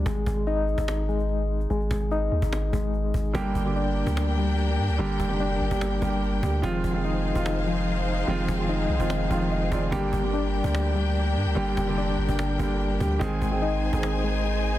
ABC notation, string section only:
X:1
M:4/4
L:1/8
Q:1/4=146
K:Gphr
V:1 name="String section"
z8 | z8 | [DGBg]8- | [DGBg]8 |
[EAcf]8- | [EAcf]8 | [DGBg]8- | [DGBg]8 |
[EAca]8 |]